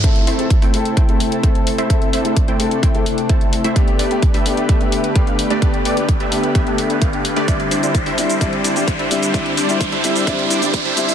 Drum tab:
HH |xxoxxooxxxoxxxox|xxoxxxoxxxoxxxox|xxoxxooxxxoxxxox|xxoxxxoxxxoxxxox|
SH |----------------|----------------|----------------|----------------|
BD |o---o---o---o---|o---o---o---o---|o---o---o---o---|o---o---o---o---|

HH |xxoxxooxxxoxxxox|xxoxxxoxxxoxxxox|
SH |x-xxx-xxx-xxx-xx|x-xxx-xxx-xxx-xx|
BD |o---o---o---o---|o---o---o---o---|